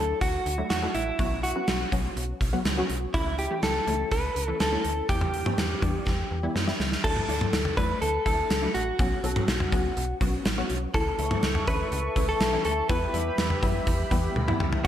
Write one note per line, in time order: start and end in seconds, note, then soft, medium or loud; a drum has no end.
0.00 0.14 D2 loud
0.00 0.48 F#3 medium
0.00 0.48 A3 medium
0.00 0.48 D4 medium
0.00 0.48 E4 medium
0.00 0.21 A4 loud
0.21 0.38 D2 loud
0.21 0.67 F#4 medium
0.21 kick medium
0.21 closed hi-hat medium
0.46 0.63 D2 loud
0.46 closed hi-hat medium
0.58 0.78 F#3 medium
0.58 0.78 A3 medium
0.58 0.78 D4 medium
0.58 0.78 E4 medium
0.70 0.87 E2 medium
0.70 0.93 F#4 medium
0.70 snare loud
0.70 closed hi-hat medium
0.82 1.13 F#3 medium
0.82 1.13 A3 medium
0.82 1.13 D4 medium
0.82 1.13 E4 medium
0.95 1.12 A1 loud
0.95 1.40 E4 medium
0.95 closed hi-hat medium
1.19 1.53 B1 loud
1.19 1.50 F#3 medium
1.19 1.50 B3 medium
1.19 1.50 C#4 medium
1.19 1.50 F#4 medium
1.19 kick loud
1.19 closed hi-hat medium
1.43 1.89 F#4 medium
1.43 closed hi-hat medium
1.56 1.86 F#3 medium
1.56 1.86 B3 medium
1.56 1.86 C#4 medium
1.56 1.86 F#4 medium
1.68 1.85 B1 loud
1.68 snare loud
1.68 closed hi-hat medium
1.92 2.09 B1 loud
1.92 2.43 F#3 medium
1.92 2.43 B3 medium
1.92 2.43 C#4 medium
1.92 2.43 F#4 medium
1.92 kick medium
1.92 closed hi-hat medium
2.17 2.34 B1 loud
2.17 closed hi-hat medium
2.41 2.58 B1 loud
2.41 kick medium
2.41 closed hi-hat medium
2.53 2.73 F#3 medium
2.53 2.73 B3 medium
2.53 2.73 C#4 medium
2.53 2.73 F#4 loud
2.65 2.82 C#2 loud
2.65 snare loud
2.65 closed hi-hat medium
2.77 3.08 F#3 medium
2.77 3.08 B3 medium
2.77 3.08 C#4 medium
2.77 3.08 F#4 loud
2.90 3.07 B1 medium
2.90 closed hi-hat medium
3.14 3.48 C#2 loud
3.14 3.44 E3 medium
3.14 3.44 A3 medium
3.14 3.44 C#4 medium
3.14 3.44 E4 medium
3.14 3.38 E4 medium
3.14 kick loud
3.14 closed hi-hat medium
3.39 3.63 G4 medium
3.39 closed hi-hat medium
3.51 3.81 E3 medium
3.51 3.81 A3 medium
3.51 3.81 C#4 medium
3.51 3.81 G4 medium
3.63 3.80 C#2 loud
3.63 4.08 A4 medium
3.63 snare loud
3.63 closed hi-hat medium
3.87 4.04 C#2 loud
3.87 4.38 E3 medium
3.87 4.38 A3 medium
3.87 4.38 C#4 medium
3.87 4.38 E4 medium
3.87 closed hi-hat medium
4.12 4.29 C#2 loud
4.12 4.57 B4 loud
4.12 kick medium
4.12 closed hi-hat medium
4.36 4.53 C#2 medium
4.36 closed hi-hat medium
4.48 4.68 E3 medium
4.48 4.68 A3 medium
4.48 4.68 C#4 medium
4.48 4.68 E4 medium
4.60 4.77 D2 medium
4.60 5.09 A4 loud
4.60 snare loud
4.60 closed hi-hat medium
4.72 5.03 E3 medium
4.72 5.03 A3 medium
4.72 5.03 C#4 medium
4.72 5.03 E4 medium
4.85 5.02 D2 medium
4.85 closed hi-hat medium
5.09 5.43 E2 loud
5.09 5.40 E3 medium
5.09 5.40 G3 medium
5.09 5.40 B3 medium
5.09 5.40 E4 medium
5.09 6.52 G4 medium
5.09 kick loud
5.09 closed hi-hat medium
5.21 mid tom medium
5.34 closed hi-hat medium
5.46 5.76 E3 medium
5.46 5.76 G3 medium
5.46 5.76 B3 medium
5.46 5.76 C#4 medium
5.46 mid tom medium
5.58 5.75 E2 loud
5.58 snare loud
5.58 closed hi-hat medium
5.82 5.99 E2 loud
5.82 6.33 E3 medium
5.82 6.33 G3 medium
5.82 6.33 B3 medium
5.82 6.33 D4 loud
5.82 kick loud
5.82 closed hi-hat medium
5.82 mid tom medium
6.07 6.24 E2 loud
6.07 kick medium
6.07 snare medium
6.31 6.48 E2 medium
6.43 6.64 E3 medium
6.43 6.64 G3 medium
6.43 6.64 B3 medium
6.43 6.64 E4 loud
6.55 6.73 F#2 medium
6.55 snare medium
6.67 6.98 E3 medium
6.67 6.98 G3 medium
6.67 6.98 B3 medium
6.67 6.98 E4 loud
6.67 snare medium
6.80 6.97 C#2 medium
6.80 snare loud
6.92 snare medium
7.04 7.21 D2 loud
7.04 7.25 F#3 medium
7.04 7.25 A3 medium
7.04 7.25 D4 medium
7.04 7.25 E4 medium
7.04 7.77 A4 loud
7.04 kick loud
7.04 crash medium
7.16 mid tom medium
7.29 7.46 D2 medium
7.29 7.69 F#3 medium
7.29 7.69 A3 medium
7.29 7.69 D4 medium
7.29 7.69 E4 medium
7.29 closed hi-hat medium
7.41 mid tom medium
7.53 7.70 D2 loud
7.53 snare loud
7.53 closed hi-hat medium
7.65 mid tom medium
7.77 7.94 E2 medium
7.77 8.18 F#3 medium
7.77 8.18 A3 medium
7.77 8.18 D4 medium
7.77 8.18 E4 medium
7.77 8.01 B4 loud
7.77 kick loud
7.77 closed hi-hat medium
8.02 8.19 D2 loud
8.02 8.24 A4 loud
8.02 closed hi-hat medium
8.26 8.43 D2 loud
8.26 8.57 F#3 medium
8.26 8.57 A3 medium
8.26 8.56 D4 medium
8.26 8.56 E4 medium
8.26 8.71 A4 loud
8.26 kick medium
8.26 closed hi-hat medium
8.50 8.68 C#2 loud
8.50 snare loud
8.50 closed hi-hat medium
8.62 8.93 F#3 medium
8.62 8.93 A3 medium
8.62 8.93 D4 medium
8.62 8.93 E4 medium
8.74 8.92 A1 medium
8.74 10.17 F#4 medium
8.74 closed hi-hat medium
8.99 9.16 B1 loud
8.99 9.20 F#3 medium
8.99 9.20 B3 medium
8.99 9.20 C#4 medium
8.99 9.20 F#4 medium
8.99 kick loud
8.99 closed hi-hat medium
9.24 9.41 B1 medium
9.24 9.64 F#3 medium
9.24 9.64 B3 medium
9.24 9.64 C#4 medium
9.24 9.64 A4 medium
9.24 closed hi-hat medium
9.36 mid tom loud
9.48 9.65 B1 loud
9.48 snare loud
9.48 closed hi-hat medium
9.60 mid tom medium
9.72 9.90 C#2 medium
9.72 10.13 F#3 medium
9.72 10.13 B3 medium
9.72 10.13 C#4 medium
9.72 10.13 F#4 loud
9.72 kick loud
9.72 closed hi-hat medium
9.97 10.14 B1 loud
9.97 closed hi-hat medium
10.21 10.38 B1 loud
10.21 10.52 F#3 medium
10.21 10.52 B3 medium
10.21 10.52 C#4 medium
10.21 10.52 F#4 loud
10.21 kick medium
10.21 closed hi-hat medium
10.45 10.63 A1 medium
10.45 snare loud
10.45 closed hi-hat medium
10.58 10.88 F#3 loud
10.58 10.88 B3 medium
10.58 10.88 C#4 medium
10.58 10.88 F#4 loud
10.70 10.87 B1 medium
10.70 closed hi-hat medium
10.94 11.11 C#2 loud
10.94 11.15 E3 medium
10.94 11.15 A3 medium
10.94 11.15 C#4 medium
10.94 11.15 E4 medium
10.94 12.88 A4 medium
10.94 11.67 A4 medium
10.94 14.81 E5 medium
10.94 12.88 C#6 medium
10.94 kick loud
10.94 closed hi-hat medium
11.19 11.36 C#2 loud
11.19 11.60 E3 medium
11.19 11.60 A3 medium
11.19 11.60 C#4 medium
11.19 11.60 E4 medium
11.19 closed hi-hat medium
11.31 mid tom medium
11.43 11.60 C#2 loud
11.43 snare loud
11.43 closed hi-hat medium
11.55 mid tom medium
11.67 11.85 D2 medium
11.67 12.08 E3 medium
11.67 12.08 A3 medium
11.67 12.08 C#4 medium
11.67 12.08 E4 medium
11.67 12.28 B4 loud
11.67 kick loud
11.67 closed hi-hat medium
11.92 12.09 C#2 loud
11.92 closed hi-hat medium
12.16 12.33 C#2 loud
12.16 12.47 E3 medium
12.16 12.47 A3 medium
12.16 12.47 C#4 medium
12.16 12.47 E4 medium
12.16 kick medium
12.16 closed hi-hat medium
12.29 12.64 A4 loud
12.40 12.58 B1 medium
12.40 snare loud
12.40 closed hi-hat medium
12.53 12.83 E3 medium
12.53 12.83 A3 medium
12.53 12.84 C#4 medium
12.53 12.83 E4 medium
12.65 12.82 D2 medium
12.65 12.89 A4 loud
12.65 closed hi-hat medium
12.89 13.07 E2 loud
12.89 13.10 E3 medium
12.89 13.10 G3 medium
12.89 13.10 B3 medium
12.89 13.10 E4 medium
12.89 14.83 G4 medium
12.89 14.56 B4 medium
12.89 14.83 B5 medium
12.89 kick loud
12.89 closed hi-hat medium
13.14 13.31 E2 medium
13.14 13.55 E3 medium
13.14 13.55 G3 medium
13.14 13.55 B3 medium
13.14 13.55 E4 medium
13.14 closed hi-hat medium
13.38 13.55 E2 loud
13.38 snare loud
13.38 closed hi-hat medium
13.50 mid tom medium
13.62 13.80 F#2 medium
13.62 14.03 E3 medium
13.62 14.03 G3 medium
13.62 14.03 B3 medium
13.62 14.03 E4 loud
13.62 kick loud
13.62 closed hi-hat medium
13.87 14.04 E2 loud
13.87 kick medium
13.87 closed hi-hat medium
14.11 14.28 E2 loud
14.11 14.42 E3 medium
14.11 14.42 G3 medium
14.11 14.42 B3 medium
14.11 14.42 E4 loud
14.11 kick medium
14.11 closed hi-hat medium
14.36 14.53 D2 loud
14.36 high tom medium
14.48 14.78 E3 medium
14.48 14.79 G3 medium
14.48 14.78 B3 medium
14.48 14.78 E4 loud
14.48 mid tom medium
14.60 14.77 C#2 medium
14.60 mid tom medium
14.73 floor tom medium